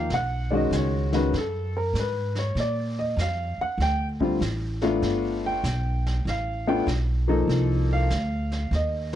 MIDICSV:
0, 0, Header, 1, 5, 480
1, 0, Start_track
1, 0, Tempo, 615385
1, 75, Time_signature, 4, 2, 24, 8
1, 7139, End_track
2, 0, Start_track
2, 0, Title_t, "Upright piano"
2, 0, Program_c, 0, 0
2, 0, Note_on_c, 0, 58, 52
2, 0, Note_on_c, 0, 63, 49
2, 0, Note_on_c, 0, 67, 68
2, 0, Note_on_c, 0, 77, 78
2, 79, Note_off_c, 0, 58, 0
2, 83, Note_off_c, 0, 63, 0
2, 83, Note_off_c, 0, 77, 0
2, 88, Note_off_c, 0, 67, 0
2, 109, Note_on_c, 0, 78, 99
2, 394, Note_on_c, 0, 74, 53
2, 401, Note_on_c, 0, 51, 66
2, 401, Note_on_c, 0, 56, 65
2, 403, Note_off_c, 0, 78, 0
2, 407, Note_on_c, 0, 61, 56
2, 410, Note_off_c, 0, 74, 0
2, 413, Note_on_c, 0, 66, 74
2, 432, Note_on_c, 0, 75, 80
2, 569, Note_off_c, 0, 75, 0
2, 585, Note_on_c, 0, 73, 71
2, 846, Note_off_c, 0, 51, 0
2, 846, Note_off_c, 0, 56, 0
2, 849, Note_off_c, 0, 61, 0
2, 852, Note_off_c, 0, 66, 0
2, 877, Note_on_c, 0, 51, 69
2, 881, Note_off_c, 0, 73, 0
2, 882, Note_on_c, 0, 56, 60
2, 888, Note_on_c, 0, 61, 62
2, 889, Note_on_c, 0, 66, 70
2, 895, Note_on_c, 0, 71, 79
2, 1020, Note_off_c, 0, 51, 0
2, 1023, Note_off_c, 0, 56, 0
2, 1025, Note_off_c, 0, 61, 0
2, 1026, Note_off_c, 0, 66, 0
2, 1040, Note_off_c, 0, 71, 0
2, 1073, Note_on_c, 0, 69, 71
2, 1365, Note_off_c, 0, 69, 0
2, 1378, Note_on_c, 0, 70, 71
2, 1522, Note_off_c, 0, 70, 0
2, 1558, Note_on_c, 0, 71, 70
2, 1847, Note_off_c, 0, 71, 0
2, 1861, Note_on_c, 0, 73, 70
2, 2003, Note_off_c, 0, 73, 0
2, 2027, Note_on_c, 0, 74, 74
2, 2322, Note_off_c, 0, 74, 0
2, 2332, Note_on_c, 0, 75, 77
2, 2479, Note_off_c, 0, 75, 0
2, 2499, Note_on_c, 0, 77, 75
2, 2798, Note_off_c, 0, 77, 0
2, 2819, Note_on_c, 0, 78, 87
2, 2962, Note_off_c, 0, 78, 0
2, 2979, Note_on_c, 0, 79, 84
2, 3164, Note_off_c, 0, 79, 0
2, 3278, Note_on_c, 0, 50, 57
2, 3281, Note_on_c, 0, 55, 59
2, 3288, Note_on_c, 0, 60, 51
2, 3291, Note_on_c, 0, 65, 64
2, 3421, Note_off_c, 0, 50, 0
2, 3422, Note_off_c, 0, 55, 0
2, 3425, Note_off_c, 0, 60, 0
2, 3427, Note_off_c, 0, 65, 0
2, 3759, Note_on_c, 0, 57, 75
2, 3764, Note_on_c, 0, 59, 62
2, 3769, Note_on_c, 0, 62, 63
2, 3771, Note_on_c, 0, 65, 81
2, 4261, Note_on_c, 0, 79, 80
2, 4365, Note_off_c, 0, 57, 0
2, 4368, Note_off_c, 0, 59, 0
2, 4370, Note_off_c, 0, 62, 0
2, 4371, Note_off_c, 0, 65, 0
2, 4857, Note_off_c, 0, 79, 0
2, 4906, Note_on_c, 0, 77, 77
2, 5202, Note_off_c, 0, 77, 0
2, 5206, Note_on_c, 0, 57, 70
2, 5206, Note_on_c, 0, 59, 65
2, 5211, Note_on_c, 0, 62, 62
2, 5215, Note_on_c, 0, 79, 90
2, 5216, Note_on_c, 0, 65, 83
2, 5345, Note_off_c, 0, 57, 0
2, 5345, Note_off_c, 0, 59, 0
2, 5347, Note_off_c, 0, 62, 0
2, 5350, Note_off_c, 0, 65, 0
2, 5361, Note_off_c, 0, 79, 0
2, 5676, Note_on_c, 0, 53, 70
2, 5680, Note_on_c, 0, 58, 65
2, 5685, Note_on_c, 0, 63, 65
2, 5689, Note_on_c, 0, 69, 78
2, 6183, Note_on_c, 0, 77, 81
2, 6284, Note_off_c, 0, 53, 0
2, 6286, Note_off_c, 0, 58, 0
2, 6289, Note_off_c, 0, 63, 0
2, 6291, Note_off_c, 0, 69, 0
2, 6779, Note_off_c, 0, 77, 0
2, 6827, Note_on_c, 0, 75, 75
2, 7123, Note_off_c, 0, 75, 0
2, 7139, End_track
3, 0, Start_track
3, 0, Title_t, "Upright bass"
3, 0, Program_c, 1, 32
3, 80, Note_on_c, 1, 35, 77
3, 543, Note_off_c, 1, 35, 0
3, 553, Note_on_c, 1, 37, 87
3, 1019, Note_off_c, 1, 37, 0
3, 1037, Note_on_c, 1, 42, 80
3, 1501, Note_off_c, 1, 42, 0
3, 1509, Note_on_c, 1, 44, 77
3, 1978, Note_off_c, 1, 44, 0
3, 1990, Note_on_c, 1, 46, 78
3, 2458, Note_off_c, 1, 46, 0
3, 2469, Note_on_c, 1, 41, 85
3, 2769, Note_off_c, 1, 41, 0
3, 2946, Note_on_c, 1, 38, 84
3, 3416, Note_off_c, 1, 38, 0
3, 3435, Note_on_c, 1, 33, 83
3, 3901, Note_off_c, 1, 33, 0
3, 3915, Note_on_c, 1, 31, 80
3, 4381, Note_off_c, 1, 31, 0
3, 4396, Note_on_c, 1, 35, 86
3, 4861, Note_off_c, 1, 35, 0
3, 4876, Note_on_c, 1, 33, 80
3, 5342, Note_off_c, 1, 33, 0
3, 5356, Note_on_c, 1, 35, 86
3, 5822, Note_off_c, 1, 35, 0
3, 5830, Note_on_c, 1, 36, 81
3, 6299, Note_off_c, 1, 36, 0
3, 6321, Note_on_c, 1, 38, 87
3, 6784, Note_off_c, 1, 38, 0
3, 6794, Note_on_c, 1, 39, 88
3, 7139, Note_off_c, 1, 39, 0
3, 7139, End_track
4, 0, Start_track
4, 0, Title_t, "Muted upright bass strokes"
4, 2790, Note_on_c, 9, 29, 37
4, 2868, Note_off_c, 9, 29, 0
4, 7139, End_track
5, 0, Start_track
5, 0, Title_t, "Drums"
5, 78, Note_on_c, 9, 25, 45
5, 78, Note_on_c, 9, 38, 44
5, 156, Note_off_c, 9, 38, 0
5, 564, Note_on_c, 9, 38, 64
5, 566, Note_on_c, 9, 44, 67
5, 642, Note_off_c, 9, 38, 0
5, 644, Note_off_c, 9, 44, 0
5, 880, Note_on_c, 9, 38, 36
5, 958, Note_off_c, 9, 38, 0
5, 1043, Note_off_c, 9, 25, 0
5, 1043, Note_on_c, 9, 25, 43
5, 1043, Note_on_c, 9, 38, 45
5, 1121, Note_off_c, 9, 38, 0
5, 1522, Note_on_c, 9, 38, 55
5, 1523, Note_on_c, 9, 44, 53
5, 1600, Note_off_c, 9, 38, 0
5, 1601, Note_off_c, 9, 44, 0
5, 1836, Note_on_c, 9, 38, 40
5, 1914, Note_off_c, 9, 38, 0
5, 2002, Note_off_c, 9, 25, 0
5, 2002, Note_on_c, 9, 25, 51
5, 2002, Note_on_c, 9, 38, 42
5, 2080, Note_off_c, 9, 38, 0
5, 2485, Note_on_c, 9, 38, 60
5, 2486, Note_on_c, 9, 44, 54
5, 2563, Note_off_c, 9, 38, 0
5, 2564, Note_off_c, 9, 44, 0
5, 2965, Note_off_c, 9, 25, 0
5, 2965, Note_on_c, 9, 25, 41
5, 2965, Note_on_c, 9, 38, 40
5, 3043, Note_off_c, 9, 38, 0
5, 3280, Note_on_c, 9, 36, 54
5, 3358, Note_off_c, 9, 36, 0
5, 3443, Note_on_c, 9, 38, 61
5, 3444, Note_on_c, 9, 44, 48
5, 3521, Note_off_c, 9, 38, 0
5, 3522, Note_off_c, 9, 44, 0
5, 3756, Note_on_c, 9, 38, 37
5, 3834, Note_off_c, 9, 38, 0
5, 3919, Note_off_c, 9, 25, 0
5, 3919, Note_on_c, 9, 25, 48
5, 3919, Note_on_c, 9, 38, 42
5, 3997, Note_off_c, 9, 38, 0
5, 4400, Note_on_c, 9, 38, 61
5, 4402, Note_on_c, 9, 44, 64
5, 4478, Note_off_c, 9, 38, 0
5, 4480, Note_off_c, 9, 44, 0
5, 4730, Note_on_c, 9, 38, 38
5, 4808, Note_off_c, 9, 38, 0
5, 4891, Note_off_c, 9, 25, 0
5, 4891, Note_on_c, 9, 25, 43
5, 4891, Note_on_c, 9, 38, 44
5, 4969, Note_off_c, 9, 38, 0
5, 5364, Note_on_c, 9, 38, 57
5, 5365, Note_on_c, 9, 44, 57
5, 5442, Note_off_c, 9, 38, 0
5, 5443, Note_off_c, 9, 44, 0
5, 5844, Note_off_c, 9, 25, 0
5, 5844, Note_on_c, 9, 25, 46
5, 5844, Note_on_c, 9, 38, 42
5, 5922, Note_off_c, 9, 38, 0
5, 6321, Note_on_c, 9, 38, 63
5, 6323, Note_on_c, 9, 44, 61
5, 6399, Note_off_c, 9, 38, 0
5, 6401, Note_off_c, 9, 44, 0
5, 6643, Note_on_c, 9, 38, 37
5, 6721, Note_off_c, 9, 38, 0
5, 6807, Note_off_c, 9, 25, 0
5, 6807, Note_on_c, 9, 25, 55
5, 6807, Note_on_c, 9, 38, 40
5, 6885, Note_off_c, 9, 38, 0
5, 7139, Note_off_c, 9, 25, 0
5, 7139, End_track
0, 0, End_of_file